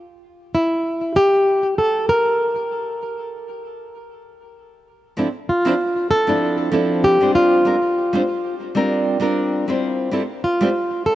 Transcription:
0.54 1.18 E4 medium
1.16 1.78 G4 medium
1.78 2.09 A4 medium
2.09 4.21 A#4 loud
5.17 5.26 F3 medium
5.17 5.27 C4 medium
5.17 5.27 D4 medium
5.17 5.27 E4 medium
5.17 5.27 A4 medium
5.49 6.07 F4 medium
5.65 5.73 F3 medium
5.65 5.73 C4 medium
5.65 5.73 D4 medium
5.65 5.73 E4 medium
5.65 5.74 C5 medium
6.11 6.69 A4 loud
6.27 6.69 F3 medium
6.27 6.69 C4 medium
6.27 6.69 D4 medium
6.27 6.70 E4 medium
6.27 6.70 A4 medium
6.71 7.17 F3 medium
6.71 7.17 C4 medium
6.71 7.17 D4 medium
6.71 7.18 E4 medium
6.71 7.18 A4 medium
7.04 7.33 G4 loud
7.21 7.62 G3 medium
7.21 7.62 C4 medium
7.21 7.62 D4 medium
7.21 7.63 F4 medium
7.21 7.63 C5 medium
7.35 8.55 F4 loud
7.65 7.74 G3 medium
7.65 7.74 C4 medium
7.65 7.75 D4 medium
7.65 7.75 F4 medium
7.65 7.75 A#4 medium
8.13 8.20 G3 medium
8.13 8.21 C4 medium
8.13 8.21 D4 medium
8.13 8.21 F4 medium
8.13 8.21 C5 medium
8.75 9.16 G3 medium
8.75 9.17 C4 medium
8.75 9.17 D4 medium
8.75 9.17 F4 medium
8.75 9.18 A#4 medium
9.20 9.64 G3 medium
9.20 9.65 C4 medium
9.20 9.65 D4 medium
9.20 9.65 F4 medium
9.20 9.66 A#4 medium
9.68 10.09 G3 medium
9.68 10.09 C4 medium
9.68 10.10 E4 medium
9.68 10.10 F4 medium
9.68 10.10 C5 medium
10.12 10.21 G3 medium
10.12 10.22 C4 medium
10.12 10.22 E4 medium
10.12 10.22 F4 medium
10.12 10.22 A4 medium
10.44 11.06 F4 medium
10.61 10.68 G3 medium
10.61 10.68 C4 medium
10.61 10.69 E4 medium
10.61 10.69 F4 medium
10.61 10.69 C5 medium
11.06 11.15 A4 loud

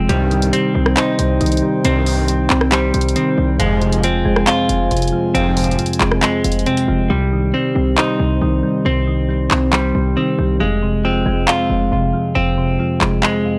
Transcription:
0.00 0.12 F2 loud
0.00 0.10 C3 medium
0.00 0.11 F3 medium
0.00 0.11 G#3 loud
0.00 0.11 C4 medium
0.00 7.06 C5 medium
0.09 0.51 C2 loud
0.09 0.51 G2 loud
0.09 1.18 C3 medium
0.09 0.51 D#3 loud
0.09 2.71 G3 loud
0.09 3.56 D#4 medium
0.09 3.56 G5 medium
0.09 closed hi-hat medium
0.31 1.40 D#3 medium
0.31 closed hi-hat soft
0.42 closed hi-hat medium
0.53 1.61 G3 medium
0.53 1.84 C4 loud
0.53 closed hi-hat medium
0.74 0.96 C2 loud
0.74 1.84 C4 medium
0.86 cross-stick loud
0.97 3.60 D#4 medium
0.97 2.06 C5 medium
0.97 clap loud
0.97 closed hi-hat medium
1.19 1.40 C2 loud
1.19 1.83 C3 medium
1.19 closed hi-hat medium
1.41 1.62 C2 loud
1.41 2.05 D#3 medium
1.41 closed hi-hat medium
1.46 closed hi-hat medium
1.52 closed hi-hat medium
1.57 closed hi-hat medium
1.62 2.27 G3 medium
1.84 2.26 C2 loud
1.84 2.48 C2 loud
1.84 2.26 G2 loud
1.84 2.93 C3 medium
1.84 2.26 D#3 loud
1.84 3.15 C4 loud
1.84 closed hi-hat medium
2.06 3.15 D#3 medium
2.06 open hi-hat medium
2.28 3.36 G3 medium
2.28 closed hi-hat medium
2.50 2.92 C2 loud
2.50 3.60 C4 loud
2.50 clap loud
2.61 cross-stick loud
2.72 3.60 G3 loud
2.72 3.60 C5 medium
2.72 clap loud
2.72 closed hi-hat medium
2.94 3.15 C2 loud
2.94 3.60 C3 medium
2.94 closed hi-hat medium
3.01 closed hi-hat medium
3.09 closed hi-hat medium
3.16 3.60 D#3 medium
3.16 3.59 C4 medium
3.16 closed hi-hat medium
3.38 3.59 C2 loud
3.38 3.60 G3 medium
3.59 4.23 F1 loud
3.59 4.01 C2 loud
3.59 4.68 F2 loud
3.59 4.01 G#2 loud
3.59 4.01 F3 loud
3.59 6.21 G#3 loud
3.59 7.07 F4 medium
3.59 7.07 G#5 medium
3.59 closed hi-hat medium
3.82 4.90 C3 medium
3.82 closed hi-hat soft
3.93 closed hi-hat medium
4.03 5.11 F3 medium
4.03 5.33 C4 loud
4.03 closed hi-hat medium
4.25 4.46 F1 loud
4.25 5.35 G#3 loud
4.36 cross-stick loud
4.47 5.57 C4 medium
4.47 7.10 F4 loud
4.47 clap loud
4.47 closed hi-hat medium
4.69 4.90 F1 loud
4.69 5.34 F2 medium
4.69 closed hi-hat medium
4.91 5.12 F1 loud
4.91 5.56 C3 medium
4.91 closed hi-hat medium
4.97 closed hi-hat medium
5.02 closed hi-hat medium
5.08 closed hi-hat medium
5.12 5.78 F3 medium
5.35 5.77 F1 loud
5.35 5.76 C2 loud
5.35 6.43 F2 loud
5.35 5.76 G#2 loud
5.35 5.76 F3 loud
5.35 6.65 C4 loud
5.35 closed hi-hat medium
5.57 6.66 C3 medium
5.57 closed hi-hat soft
5.57 open hi-hat medium
5.64 closed hi-hat soft
5.71 closed hi-hat medium
5.79 6.87 F3 medium
5.79 closed hi-hat medium
5.86 closed hi-hat medium
5.93 closed hi-hat medium
6.00 6.22 F1 loud
6.00 7.10 G#3 loud
6.00 clap loud
6.11 cross-stick loud
6.22 7.10 G#3 medium
6.22 7.10 C4 medium
6.22 clap loud
6.22 closed hi-hat medium
6.44 6.65 F1 loud
6.44 7.10 F2 medium
6.44 closed hi-hat medium
6.52 closed hi-hat medium
6.59 closed hi-hat soft
6.66 7.09 C3 medium
6.66 7.10 C4 medium
6.66 closed hi-hat medium
6.77 closed hi-hat medium
6.88 7.09 F1 loud
6.88 7.10 F3 medium
7.10 7.52 C2 loud
7.10 8.19 C3 medium
7.10 9.72 G3 loud
7.33 8.40 D#3 medium
7.54 8.62 G3 medium
7.54 8.85 C4 medium
7.75 7.97 C2 loud
7.75 8.85 C4 medium
7.98 10.60 D#4 medium
7.98 9.07 C5 medium
7.98 clap loud
8.20 8.41 C2 loud
8.20 8.84 C3 medium
8.41 8.62 C2 loud
8.41 9.06 D#3 medium
8.63 9.27 G3 medium
8.85 9.48 C2 loud
8.85 9.94 C3 medium
8.85 10.16 C4 loud
9.07 10.16 D#3 medium
9.29 10.37 G3 medium
9.51 9.93 C2 loud
9.51 10.60 C4 loud
9.51 clap medium
9.73 10.60 G3 medium
9.73 10.61 C5 medium
9.73 clap loud
9.95 10.16 C2 loud
9.95 10.61 C3 medium
10.17 10.61 D#3 medium
10.17 10.60 C4 medium
10.38 10.60 C2 loud
10.38 10.60 G3 medium
10.60 11.23 F1 loud
10.60 11.69 F2 loud
10.60 13.22 G#3 loud
10.82 11.91 C3 medium
11.04 12.12 F3 medium
11.04 12.34 C4 loud
11.26 11.47 F1 loud
11.26 12.35 G#3 loud
11.48 12.58 C4 medium
11.48 13.59 F4 medium
11.48 clap loud
11.70 11.91 F1 loud
11.70 12.35 F2 medium
11.92 12.13 F1 loud
11.92 12.57 C3 medium
12.13 12.78 F3 medium
12.35 12.78 F1 loud
12.35 13.44 F2 loud
12.35 13.59 C4 medium
12.58 13.59 C3 medium
12.80 13.59 F3 medium
13.00 13.22 F1 loud
13.00 13.59 G#3 loud
13.00 clap loud
13.23 13.59 G#3 medium
13.23 13.59 C4 medium
13.23 clap loud
13.45 13.59 F2 medium

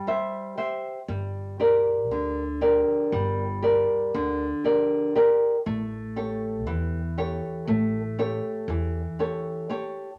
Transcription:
0.00 0.55 G3 medium
0.07 0.56 G4 soft
0.07 0.56 C5 soft
0.07 0.57 E5 soft
0.57 0.99 G4 soft
0.57 0.99 C5 soft
0.57 0.99 E5 soft
1.08 2.10 G1 medium
1.08 1.59 G3 medium
1.60 2.41 G4 soft
1.60 2.42 A#4 soft
1.60 2.42 D5 soft
2.10 2.82 D2 medium
2.10 3.10 D3 medium
2.61 3.43 G4 soft
2.61 3.43 A#4 soft
2.61 3.43 D5 soft
3.12 3.84 G1 medium
3.12 4.11 G3 medium
3.62 4.44 G4 soft
3.62 4.45 A#4 soft
3.62 4.45 D5 medium
4.14 4.50 D2 medium
4.14 5.13 D3 medium
4.64 5.14 G4 soft
4.64 5.14 A#4 soft
4.64 5.15 D5 soft
5.15 5.56 G4 soft
5.15 5.56 A#4 soft
5.15 5.56 D5 soft
5.66 6.67 A1 medium
5.66 6.64 A3 medium
6.16 6.97 G4 soft
6.16 6.98 A4 soft
6.16 6.98 C#5 soft
6.67 7.38 E2 medium
6.67 7.65 E3 medium
7.18 7.98 G4 soft
7.18 7.99 A4 soft
7.18 7.99 C#5 medium
7.67 8.38 A1 medium
7.67 8.66 A3 medium
8.19 8.99 G4 soft
8.19 8.99 A4 soft
8.19 8.99 C#5 medium
8.68 9.04 E2 medium
8.68 9.67 E3 medium
9.19 9.68 G4 soft
9.19 9.69 A4 soft
9.19 9.69 C#5 soft
9.70 10.10 G4 soft
9.70 10.10 A4 soft
9.70 10.10 C#5 medium

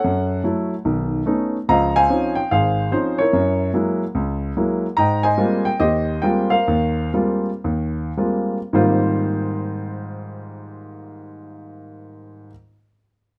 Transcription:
0.00 0.70 A4 soft
0.00 0.70 C#5 soft
0.00 0.43 F#5 medium
0.04 0.40 F#2 medium
0.44 0.73 F#3 soft
0.44 0.73 A3 soft
0.44 0.73 E4 medium
0.85 1.21 B1 medium
0.85 1.22 D#3 medium
1.26 1.56 A3 soft
1.26 1.56 B3 soft
1.26 1.56 C#4 soft
1.26 1.56 D#4 medium
1.69 2.05 C#2 medium
1.69 2.05 F3 medium
1.69 2.49 D#5 medium
1.69 1.95 F5 medium
1.69 1.97 A#5 medium
1.96 2.51 C5 medium
1.96 2.50 F5 medium
1.96 2.35 G#5 loud
2.10 2.39 F3 medium
2.10 2.39 C4 soft
2.10 2.39 C#4 soft
2.10 2.39 D#4 soft
2.35 2.51 G5 medium
2.51 2.88 G#1 medium
2.51 3.31 G#4 medium
2.51 2.91 C5 medium
2.51 2.94 F5 medium
2.92 3.21 F3 soft
2.92 3.21 C4 soft
2.92 3.21 C#4 soft
2.92 3.21 D#4 medium
2.92 3.21 C5 medium
3.18 3.73 E4 soft
3.18 3.98 A#4 soft
3.18 3.70 C#5 medium
3.33 3.69 F#2 medium
3.74 4.03 F#3 soft
3.74 4.03 G#3 soft
3.74 4.03 A#3 soft
3.74 4.03 E4 medium
4.15 4.51 C#2 medium
4.57 4.85 F#3 soft
4.57 4.85 G#3 soft
4.57 4.85 A#3 soft
4.57 4.85 E4 medium
4.97 5.33 G#2 medium
4.97 5.23 D#5 medium
4.97 5.64 G5 medium
4.97 5.22 A#5 medium
5.23 5.79 C5 medium
5.23 5.78 D#5 medium
5.23 5.67 G#5 medium
5.38 5.67 G3 medium
5.38 5.67 G#3 soft
5.38 5.67 A#3 soft
5.38 5.67 C4 soft
5.38 5.67 F4 medium
5.65 5.80 G5 medium
5.80 6.17 D#2 medium
5.80 6.64 G4 medium
5.80 6.50 C5 medium
5.80 6.24 D#5 medium
6.22 6.54 G3 medium
6.22 6.54 G#3 soft
6.22 6.54 A#3 soft
6.22 6.54 C4 soft
6.22 6.54 F4 medium
6.22 6.50 G5 medium
6.50 7.42 A#4 soft
6.50 7.42 C5 soft
6.50 7.10 F5 medium
6.68 7.08 D#2 medium
7.14 7.48 G3 soft
7.14 7.48 G#3 soft
7.14 7.49 A#3 soft
7.14 7.49 C4 soft
7.14 7.49 F4 medium
7.64 8.10 D#2 medium
8.17 8.57 G3 soft
8.17 8.57 G#3 soft
8.17 8.57 A#3 soft
8.17 8.57 C4 soft
8.17 8.57 F4 medium
8.73 12.49 G#2 medium
8.73 12.49 D#3 medium
8.73 12.50 G3 medium
8.73 12.50 A#3 medium
8.73 12.51 C4 medium
8.73 12.51 F4 medium
8.73 12.46 C5 medium

